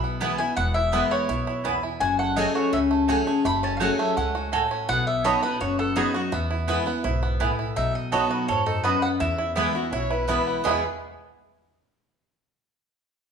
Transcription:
Already playing: B1 B2 E4 B5
0.04 B3
0.20 E3 G#3 B3 E4 B4 G#5
0.38 B3 E4 G#5
0.56 E1 E2 B3 F#5
0.74 E4 E5
0.92 E3 G#3 B3 E4 B4 G#5
1.11 B3 C#5
1.29 B1 B2 E4
1.47 E4
1.64 E2 B3 E4 B4 G#5
1.83 E4
2.00 F#1 F#2 F#4 G#5
2.19 A3 F#5
2.36 F#3 A3 C#4 F#4 G#4 C#5 D#5 G#5
2.55 F#4 C#5
2.73 C#2 C#3 C#4 E5
2.91 A3
3.08 F#3 A3 C#4 F#4 G#4 C#5 G#5
3.27 A3 C#4 G#4
3.45 F#1 F#2 A3 B5
3.63 C#4 A5
3.77 F#3 A3 F#4 C#5 F5
3.81 A3 C#4 F#4 G#4 F#5 G#5
3.99 A3 E5
4.17 C#2 G#3 C#4 F#5
4.35 F#4
4.52 A2 A3 F#4 A4 C#5 G#5
4.71 C#4
4.89 B1 B2 B3 F#5
5.07 E5
5.24 F#3 B3 D#4 F#4 A4 C#5 D#5 B5
5.43 B3 D#4 F#4 B4
5.60 F#1 F#2 F#4 C#5
5.79 B3 A4
5.96 F#3 B3 D#4 F#4 G#4 D#5 B5
6.14 D#4 F#4
6.32 E2 B3 E4
6.51 E4
6.67 E3 G#3 B3 E4 B4 G#5
6.86 B3 E4
7.04 B1 G#2 E4
7.23 B3
7.40 A2 B3 E4 B4 G#5
7.59 E4
7.76 B1 B2 D#4 E5
7.95 D#5
8.12 F#3 B3 D#4 F#4 A4 C#5 D#5 B5
8.31 F#4 B4
8.48 F#2 G#2 A4 C#5
8.66 D#4 A4
8.84 F#2 B3 F#4 B4 D#5 B5
9.02 B3 F#5
9.20 E2 E4 E5
9.38 E4
9.55 E3 G#3 B3 E4 B4 G#5
9.75 B3 E4 F#4
9.92 B1 B2 E4 C#5
10.11 E4 B4
10.28 E3 G#3 B3 E4 B4 G#5
10.47 B3
10.64 E2 B2 E3 G#3 B3 E4 B4 G#5
10.69 E4 G#4

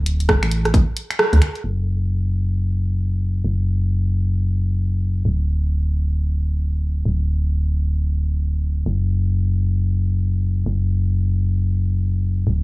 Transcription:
Already playing: D1
0.06 closed hi-hat
0.20 closed hi-hat
0.29 kick, cross-stick
0.43 A1, finger snap, closed hi-hat
0.51 closed hi-hat
0.65 cross-stick, closed hi-hat
0.74 kick, closed hi-hat
0.97 closed hi-hat
1.11 finger snap, closed hi-hat
1.19 cross-stick
1.33 D2, closed hi-hat
1.42 finger snap, closed hi-hat
1.55 closed hi-hat
1.64 F#1
3.44 F#1
5.25 D1
7.05 D1
8.86 F#1
10.66 F#1
12.47 D1

